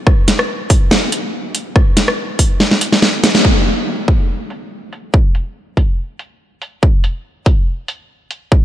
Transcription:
0.07 kick loud
0.07 cross-stick medium
0.28 snare medium
0.28 closed hi-hat medium
0.39 cross-stick medium
0.70 kick loud
0.70 open hi-hat loud
0.91 snare loud
1.12 closed hi-hat medium
1.55 closed hi-hat medium
1.76 kick loud
1.76 cross-stick medium
1.97 snare medium
1.97 closed hi-hat medium
2.08 cross-stick medium
2.39 kick medium
2.39 open hi-hat loud
2.60 snare medium
2.71 snare medium
2.81 closed hi-hat medium
2.93 snare medium
3.02 snare medium
3.24 snare loud
3.24 closed hi-hat medium
3.35 snare loud
3.45 kick loud
3.66 closed hi-hat medium
4.08 kick loud
4.08 closed hi-hat medium
4.50 closed hi-hat medium
4.93 closed hi-hat medium
5.14 kick loud
5.35 closed hi-hat medium
5.77 kick medium
5.77 closed hi-hat medium
6.19 closed hi-hat medium
6.62 closed hi-hat medium
6.83 kick loud
7.04 closed hi-hat medium
7.46 kick loud
7.46 closed hi-hat medium
7.88 closed hi-hat medium
8.31 closed hi-hat medium
8.52 kick loud

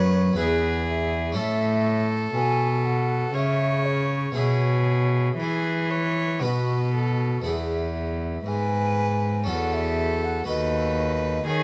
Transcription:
0.00 0.34 F#2 medium
0.00 0.35 F#2 medium
0.00 0.32 B3 soft
0.00 0.32 F#4 medium
0.00 0.33 A4 medium
0.00 0.36 B4 medium
0.00 0.37 C#5 medium
0.33 1.30 B3 medium
0.33 1.31 E4 medium
0.33 1.32 G#4 soft
0.33 0.86 B4 medium
0.38 1.32 E2 medium
0.38 1.38 E2 medium
0.38 1.34 G#4 medium
0.86 1.34 E5 medium
1.32 2.34 A2 medium
1.32 4.30 C#4 medium
1.32 4.30 E4 soft
1.32 4.31 A4 medium
1.36 2.31 A2 medium
1.36 3.36 A4 medium
1.36 2.05 E5 loud
2.34 3.32 B2 medium
2.34 3.30 B2 medium
2.34 2.86 G#5 loud
2.85 3.33 F#5 medium
3.34 4.33 C#3 medium
3.34 4.31 C#3 medium
3.34 4.37 C#5 medium
3.34 3.86 E5 medium
3.85 4.35 C#5 medium
4.32 5.36 B2 medium
4.32 5.35 B2 medium
4.32 6.37 B3 soft
4.32 6.37 E4 soft
4.32 6.38 G#4 soft
4.32 5.28 G#4 medium
4.32 5.40 C#5 medium
5.38 6.44 E3 medium
5.38 6.39 E3 medium
5.38 5.92 G#4 medium
5.38 6.42 B4 medium
5.91 6.44 C#5 medium
6.40 7.45 B2 medium
6.40 7.41 B3 soft
6.40 7.42 D#4 soft
6.40 7.43 F#4 soft
6.40 6.94 B4 medium
6.44 7.42 B2 soft
6.94 7.45 A4 medium
7.42 8.45 E2 medium
7.42 9.42 B3 soft
7.42 9.43 E4 soft
7.42 9.44 G#4 soft
7.42 8.49 E5 medium
7.47 8.43 E2 soft
8.46 9.44 G#2 soft
8.46 9.49 G#2 medium
8.46 9.44 B4 medium
8.46 9.50 G#5 medium
9.44 10.43 C#4 soft
9.44 10.44 F#4 soft
9.44 10.45 A4 soft
9.44 10.46 A4 medium
9.48 10.48 E2 medium
9.48 10.44 E2 soft
9.48 9.75 F#5 medium
9.73 10.25 E5 loud
10.24 10.47 F#5 medium
10.44 11.43 D#2 medium
10.44 11.63 B3 soft
10.44 11.63 F#4 soft
10.44 11.63 A4 medium
10.44 11.45 B4 medium
10.44 11.44 D#5 medium
10.48 11.45 D#2 medium
11.46 11.63 D#3 medium
11.46 11.63 G#4 medium
11.46 11.63 C#5 loud

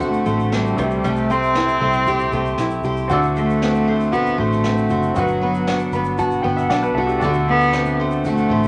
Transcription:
0.00 0.22 D2 loud
0.00 0.83 D3 medium
0.00 0.26 A3 medium
0.00 0.78 A3 medium
0.00 0.52 C4 medium
0.00 0.73 D4 medium
0.00 0.74 F#4 medium
0.00 0.83 F#4 medium
0.00 0.26 C5 medium
0.00 0.76 D5 medium
0.00 0.83 F#5 medium
0.00 kick medium
0.00 shaker medium
0.04 0.57 A3 medium
0.13 shaker soft
0.26 0.74 A1 medium
0.26 1.08 A3 medium
0.26 1.30 C5 medium
0.26 kick medium
0.26 shaker medium
0.40 shaker soft
0.52 1.06 G3 medium
0.52 1.57 C4 medium
0.52 0.84 D4 soft
0.52 snare medium
0.52 shaker medium
0.66 shaker soft
0.76 1.02 C2 medium
0.76 1.04 C3 medium
0.76 1.03 G3 medium
0.76 2.80 A3 medium
0.76 2.80 G4 soft
0.76 2.81 C5 medium
0.76 kick medium
0.76 shaker medium
0.91 shaker soft
1.04 1.77 C2 medium
1.04 3.11 C3 medium
1.04 3.10 G3 medium
1.04 1.32 A3 loud
1.04 2.07 G4 medium
1.04 1.55 G5 medium
1.04 shaker medium
1.16 shaker soft
1.30 1.81 A3 medium
1.30 2.85 C4 loud
1.30 1.82 C5 medium
1.30 shaker medium
1.43 shaker soft
1.55 2.59 E4 medium
1.55 2.07 G5 medium
1.55 snare loud
1.55 shaker medium
1.68 shaker soft
1.80 2.28 C2 loud
1.80 2.33 A3 medium
1.80 2.33 C5 medium
1.80 kick medium
1.93 shaker soft
2.06 2.83 G4 medium
2.06 3.11 G5 medium
2.06 kick medium
2.06 shaker medium
2.20 shaker soft
2.32 2.56 C2 medium
2.32 3.36 A3 medium
2.32 2.85 C5 medium
2.32 kick medium
2.32 shaker soft
2.46 shaker soft
2.57 2.82 B1 medium
2.57 3.16 E4 medium
2.57 snare medium
2.57 shaker medium
2.71 shaker soft
2.83 3.08 C2 medium
2.83 3.10 G4 medium
2.83 3.37 C5 medium
2.83 shaker medium
2.97 shaker soft
3.08 4.35 D2 medium
3.08 6.61 D3 medium
3.08 5.16 A3 medium
3.08 5.11 C4 medium
3.08 5.12 F#4 medium
3.08 4.12 F#4 medium
3.08 kick loud
3.08 shaker medium
3.12 5.13 D5 medium
3.12 3.62 F#5 medium
3.23 shaker soft
3.36 4.14 A3 loud
3.36 3.86 A3 soft
3.36 3.87 C5 soft
3.36 shaker medium
3.50 shaker soft
3.62 4.63 C4 medium
3.62 4.14 F#5 medium
3.62 snare loud
3.62 shaker medium
3.75 shaker soft
3.88 4.37 A3 medium
3.88 4.39 C5 medium
4.00 shaker soft
4.12 4.40 B3 medium
4.12 4.90 F#4 medium
4.12 5.16 F#5 medium
4.12 kick medium
4.12 shaker medium
4.26 shaker soft
4.38 4.86 A1 medium
4.38 5.16 A3 medium
4.38 5.21 A3 medium
4.38 4.90 C5 medium
4.38 kick medium
4.52 snare soft
4.52 shaker soft
4.64 5.21 C4 medium
4.64 8.03 F#4 medium
4.64 snare medium
4.64 shaker medium
4.77 shaker soft
4.90 5.14 F#1 medium
4.90 5.18 F#4 medium
4.90 5.22 C5 soft
4.90 shaker medium
5.03 shaker soft
5.14 5.89 G1 medium
5.14 6.92 F#3 medium
5.14 6.16 F#3 medium
5.14 6.71 B3 medium
5.14 6.43 F#4 medium
5.14 6.18 F#4 medium
5.14 5.67 F#5 medium
5.14 kick loud
5.14 shaker medium
5.19 6.44 B4 medium
5.28 shaker medium
5.42 5.94 B3 medium
5.42 5.92 B4 medium
5.55 shaker medium
5.67 6.71 D4 medium
5.67 6.19 F#5 medium
5.67 snare loud
5.67 shaker medium
5.79 shaker soft
5.92 6.40 G1 loud
5.92 6.43 B3 medium
5.92 6.44 B4 medium
5.92 6.17 B5 medium
5.92 shaker medium
6.05 shaker medium
6.18 6.97 F#4 medium
6.18 7.22 F#5 medium
6.18 6.43 A5 medium
6.18 kick medium
6.18 shaker medium
6.31 shaker soft
6.42 6.68 G1 medium
6.42 7.27 B3 medium
6.42 6.96 B4 medium
6.42 6.56 F#5 medium
6.42 6.68 G5 medium
6.42 kick medium
6.57 6.69 E5 medium
6.57 snare soft
6.57 shaker soft
6.69 6.93 B1 medium
6.69 7.28 D4 medium
6.69 7.22 D4 medium
6.69 6.82 D5 medium
6.69 6.94 F#5 medium
6.69 snare medium
6.69 shaker medium
6.83 6.95 B4 medium
6.83 shaker soft
6.95 7.19 C2 medium
6.95 7.23 F#4 medium
6.95 7.08 A4 medium
6.95 7.28 B4 medium
6.95 7.19 E5 medium
7.07 7.33 G4 medium
7.07 shaker soft
7.18 8.46 D2 medium
7.18 8.68 D4 medium
7.18 8.68 F#4 medium
7.18 kick loud
7.18 shaker medium
7.22 8.68 D3 medium
7.22 8.68 A3 medium
7.22 8.25 F#4 medium
7.22 8.68 D5 medium
7.22 7.73 F#5 medium
7.33 shaker soft
7.48 8.01 A3 soft
7.48 7.96 B3 loud
7.61 shaker medium
7.73 8.68 C4 medium
7.73 8.25 F#5 medium
7.73 snare loud
7.73 shaker medium
7.85 shaker medium
8.00 8.51 A3 medium
8.00 8.51 C5 medium
8.11 shaker medium
8.25 8.68 A3 loud
8.25 8.68 F#4 medium
8.25 8.68 F#5 medium
8.25 kick medium
8.25 shaker medium
8.37 shaker medium
8.50 8.68 A1 loud
8.50 8.68 A3 medium
8.50 8.68 C5 medium
8.50 kick medium
8.64 shaker soft

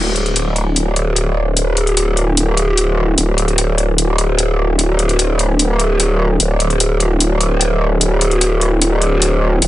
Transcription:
0.00 3.16 D1 medium
0.16 closed hi-hat soft
0.26 closed hi-hat soft
0.36 closed hi-hat medium
0.56 closed hi-hat soft
0.76 closed hi-hat medium
0.96 closed hi-hat soft
1.16 closed hi-hat medium
1.57 closed hi-hat medium
1.77 closed hi-hat soft
1.87 closed hi-hat soft
1.97 closed hi-hat medium
2.17 closed hi-hat soft
2.37 closed hi-hat medium
2.57 closed hi-hat soft
2.77 closed hi-hat medium
3.18 6.38 D1 medium
3.18 closed hi-hat medium
3.38 closed hi-hat soft
3.48 closed hi-hat soft
3.58 closed hi-hat medium
3.78 closed hi-hat soft
3.98 closed hi-hat medium
4.18 closed hi-hat soft
4.39 closed hi-hat medium
4.79 closed hi-hat medium
4.99 closed hi-hat soft
5.09 closed hi-hat soft
5.19 closed hi-hat medium
5.39 closed hi-hat soft
5.59 closed hi-hat medium
5.80 closed hi-hat soft
6.00 closed hi-hat medium
6.40 9.60 D1 medium
6.40 closed hi-hat medium
6.60 closed hi-hat soft
6.70 closed hi-hat soft
6.80 closed hi-hat medium
7.00 closed hi-hat soft
7.20 closed hi-hat medium
7.41 closed hi-hat soft
7.61 closed hi-hat medium
8.01 closed hi-hat medium
8.21 closed hi-hat soft
8.31 closed hi-hat soft
8.41 closed hi-hat medium
8.61 closed hi-hat soft
8.82 closed hi-hat medium
9.02 closed hi-hat soft
9.22 closed hi-hat medium
9.62 9.68 D1 medium
9.62 closed hi-hat medium

